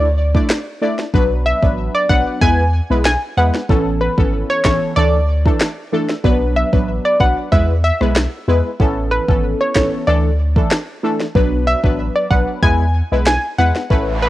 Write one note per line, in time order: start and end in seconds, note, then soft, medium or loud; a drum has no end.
0.00 0.37 D2 loud
0.00 0.32 D5 medium
0.35 0.56 A3 medium
0.35 0.56 D4 medium
0.35 0.56 E4 medium
0.35 0.56 D5 medium
0.35 kick medium
0.50 snare loud
0.50 clap loud
0.82 1.04 A3 medium
0.82 1.04 D4 medium
0.82 1.04 E4 medium
0.82 1.04 D5 medium
0.99 snare medium
1.14 1.53 B1 loud
1.14 1.59 F#3 medium
1.14 1.59 B3 medium
1.14 1.59 D4 medium
1.14 1.59 B4 loud
1.14 kick loud
1.46 1.61 E5 medium
1.62 1.88 A1 medium
1.62 2.06 F#3 medium
1.62 2.06 B3 medium
1.62 2.06 D4 medium
1.62 2.06 B4 medium
1.62 kick loud
1.94 2.08 D5 medium
2.09 2.23 B1 medium
2.09 2.39 F#3 medium
2.09 2.39 B3 medium
2.09 2.39 D4 medium
2.09 2.39 B4 medium
2.09 2.24 F#5 medium
2.09 kick medium
2.41 2.81 E2 loud
2.41 2.64 G#3 medium
2.41 2.64 B3 medium
2.41 2.64 E4 medium
2.41 2.64 B4 loud
2.41 2.87 G#5 medium
2.41 kick medium
2.90 3.16 B1 medium
2.90 3.11 G#3 medium
2.90 3.11 B3 medium
2.90 3.11 E4 medium
2.90 3.11 B4 medium
3.05 3.20 G#5 medium
3.05 snare loud
3.05 clap loud
3.37 3.51 E2 loud
3.37 3.59 G#3 medium
3.37 3.59 B3 medium
3.37 3.59 E4 medium
3.37 3.60 B4 medium
3.37 3.52 F#5 medium
3.54 snare medium
3.69 4.08 A1 loud
3.69 4.14 E3 loud
3.69 4.14 B3 medium
3.69 4.14 C#4 medium
3.69 4.14 A4 loud
3.69 kick loud
4.01 4.16 B4 medium
4.18 4.43 G#1 medium
4.18 4.61 E3 medium
4.18 4.61 B3 medium
4.18 4.61 C#4 medium
4.18 4.61 A4 medium
4.18 kick medium
4.50 4.63 C#5 medium
4.65 4.78 A1 medium
4.65 4.94 E3 medium
4.65 4.94 B3 medium
4.65 4.94 C#4 medium
4.65 4.95 A4 medium
4.65 4.80 C#5 medium
4.65 kick medium
4.65 snare loud
4.65 clap medium
4.96 5.48 D2 loud
4.96 5.19 E3 medium
4.96 5.19 A3 medium
4.96 5.19 D4 medium
4.96 5.19 A4 loud
4.96 5.42 D5 medium
5.45 5.66 E3 medium
5.45 5.67 A3 medium
5.45 5.67 D4 medium
5.45 5.67 A4 medium
5.45 kick medium
5.61 snare loud
5.61 clap loud
5.93 6.15 E3 medium
5.93 6.15 A3 medium
5.93 6.15 D4 medium
5.93 6.15 A4 medium
6.10 snare medium
6.24 6.64 B1 loud
6.24 6.69 F#3 loud
6.24 6.69 B3 medium
6.24 6.69 D4 medium
6.24 6.69 B4 loud
6.24 kick loud
6.57 6.71 E5 medium
6.73 6.99 A1 medium
6.73 7.16 F#3 medium
6.73 7.16 B3 medium
6.73 7.17 D4 medium
6.73 7.17 B4 medium
6.73 kick loud
7.05 7.18 D5 medium
7.20 7.34 B1 medium
7.20 7.50 F#3 medium
7.20 7.50 B3 medium
7.20 7.50 D4 medium
7.20 7.50 B4 medium
7.20 7.35 F#5 medium
7.20 kick medium
7.52 7.91 E2 medium
7.52 7.74 G#3 medium
7.52 7.74 B3 medium
7.52 7.74 E4 medium
7.52 7.74 B4 loud
7.52 7.67 E5 medium
7.52 kick medium
7.84 7.99 E5 medium
8.01 8.27 B1 medium
8.01 8.22 G#3 medium
8.01 8.22 B3 medium
8.01 8.22 E4 medium
8.01 8.22 B4 medium
8.01 cross-stick medium
8.16 snare loud
8.16 clap medium
8.48 8.61 E2 loud
8.48 8.70 G#3 medium
8.48 8.70 B3 medium
8.48 8.70 E4 medium
8.48 8.70 B4 medium
8.80 9.19 A1 loud
8.80 9.24 E3 medium
8.80 9.24 B3 medium
8.80 9.25 C#4 medium
8.80 9.25 A4 loud
8.80 kick loud
9.11 9.26 B4 medium
9.28 9.54 G#1 medium
9.28 9.72 E3 medium
9.28 9.72 B3 medium
9.28 9.72 C#4 medium
9.28 9.72 A4 medium
9.28 kick loud
9.61 9.74 C#5 medium
9.75 9.89 A1 medium
9.75 10.05 E3 medium
9.75 10.05 B3 medium
9.75 10.05 C#4 medium
9.75 10.05 A4 medium
9.75 9.90 C#5 medium
9.75 kick medium
9.75 snare loud
9.75 clap medium
10.07 10.59 D2 loud
10.07 10.30 E3 medium
10.07 10.30 A3 medium
10.07 10.30 D4 medium
10.07 10.30 A4 loud
10.07 10.53 D5 medium
10.56 10.77 E3 medium
10.56 10.77 A3 medium
10.56 10.77 D4 medium
10.56 10.77 A4 medium
10.56 kick medium
10.71 snare loud
10.71 clap loud
11.03 11.25 E3 medium
11.03 11.25 A3 medium
11.03 11.26 D4 medium
11.03 11.26 A4 medium
11.20 snare medium
11.35 11.74 B1 loud
11.35 11.80 F#3 loud
11.35 11.80 B3 medium
11.35 11.80 D4 medium
11.35 11.80 B4 loud
11.35 kick loud
11.67 11.82 E5 medium
11.84 12.09 A1 medium
11.84 12.27 F#3 medium
11.84 12.27 B3 medium
11.84 12.27 D4 medium
11.84 12.27 B4 medium
11.84 kick medium
12.16 12.29 D5 medium
12.31 12.44 B1 medium
12.31 12.60 F#3 medium
12.31 12.60 B3 medium
12.31 12.60 D4 medium
12.31 12.61 B4 medium
12.31 12.45 F#5 medium
12.31 kick medium
12.63 13.02 E2 loud
12.63 12.85 G#3 medium
12.63 12.85 B3 medium
12.63 12.85 E4 medium
12.63 12.85 B4 loud
12.63 13.09 G#5 loud
12.63 kick loud
13.12 13.37 B1 medium
13.12 13.32 G#3 medium
13.12 13.33 B3 medium
13.12 13.33 E4 medium
13.12 13.33 B4 medium
13.26 13.41 G#5 medium
13.26 snare loud
13.26 clap loud
13.58 13.72 E2 loud
13.58 13.81 G#3 medium
13.58 13.81 B3 medium
13.58 13.81 E4 medium
13.58 13.81 B4 medium
13.58 13.73 F#5 medium
13.76 snare medium
13.90 14.29 A1 loud
13.90 14.29 A3 medium
13.90 14.29 C#4 medium
13.90 14.29 E4 medium
13.90 14.29 B4 loud
13.90 kick loud
13.90 noise sweep medium
14.22 14.29 B4 medium